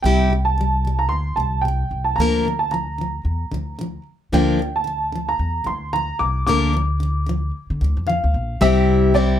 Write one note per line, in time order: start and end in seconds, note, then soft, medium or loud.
0.03 1.11 C2 medium
0.03 0.29 C3 medium
0.03 0.32 G3 medium
0.03 0.32 C4 medium
0.03 0.32 E4 medium
0.03 0.32 G4 medium
0.03 0.48 G5 medium
0.30 0.53 C3 soft
0.30 0.54 G3 soft
0.45 1.01 A5 medium
0.58 0.80 C3 soft
0.58 0.82 G3 medium
0.85 1.07 C3 soft
0.85 1.08 G3 soft
0.99 1.11 A#5 medium
1.09 1.33 D2 medium
1.09 1.38 C6 medium
1.36 1.82 C2 medium
1.36 1.60 C3 soft
1.36 1.61 G3 soft
1.36 1.62 A5 medium
1.62 1.88 C3 soft
1.62 2.07 G5 medium
1.68 1.89 G3 medium
1.91 2.13 C2 medium
2.04 2.17 A5 medium
2.16 3.21 D2 medium
2.16 2.44 D3 medium
2.16 2.61 A#5 medium
2.20 2.46 F3 medium
2.20 2.46 A#3 medium
2.20 2.47 D4 medium
2.20 2.47 A#4 medium
2.45 2.68 D3 soft
2.45 2.69 F3 soft
2.59 2.71 A5 medium
2.71 2.94 D3 medium
2.71 2.95 F3 medium
2.71 4.02 A#5 medium
2.98 3.21 D3 soft
2.98 3.23 F3 soft
3.25 3.47 E2 medium
3.52 3.96 D2 medium
3.52 3.74 D3 soft
3.52 3.76 F3 medium
3.79 4.01 D3 medium
3.79 4.03 F3 medium
4.32 5.35 D2 medium
4.32 4.58 D3 medium
4.32 4.60 F3 medium
4.32 4.60 A#3 medium
4.32 4.60 D4 medium
4.32 4.60 A#4 medium
4.32 4.77 G5 medium
4.59 4.82 D3 soft
4.59 4.83 F3 soft
4.76 5.31 A5 medium
4.84 5.08 D3 soft
4.84 5.09 F3 medium
5.12 5.35 D3 soft
5.12 5.37 F3 soft
5.29 5.67 A#5 medium
5.39 5.61 E2 medium
5.64 6.10 D2 medium
5.64 5.88 D3 soft
5.64 5.89 F3 soft
5.64 5.91 C6 medium
5.93 6.16 D3 soft
5.93 6.17 F3 medium
5.93 6.21 A#5 medium
6.19 6.42 C2 medium
6.19 6.45 D6 medium
6.47 7.50 D2 medium
6.47 6.72 D3 medium
6.47 6.74 F3 medium
6.47 6.74 A#3 medium
6.47 6.74 D4 medium
6.47 6.75 A#4 medium
6.47 8.03 D6 medium
6.73 6.96 D3 soft
6.73 6.98 F3 medium
7.00 7.23 D3 medium
7.00 7.24 F3 medium
7.26 7.49 D3 soft
7.26 7.51 F3 medium
7.70 7.79 D3 medium
7.81 7.94 D2 medium
7.81 8.03 D3 soft
7.81 8.05 F3 medium
7.97 8.19 F2 medium
8.07 8.29 D3 medium
8.07 8.31 F3 medium
8.07 8.62 F5 medium
8.24 8.32 D2 medium
8.34 8.56 A#1 medium
8.61 9.40 C2 medium
8.61 9.14 C3 medium
8.61 9.14 G3 medium
8.61 9.14 C4 medium
8.61 9.15 E4 medium
8.61 9.16 G4 medium
8.61 9.16 E5 loud
9.14 9.40 G3 medium
9.14 9.40 C4 medium
9.14 9.40 E4 medium
9.14 9.39 G4 medium
9.14 9.40 D5 medium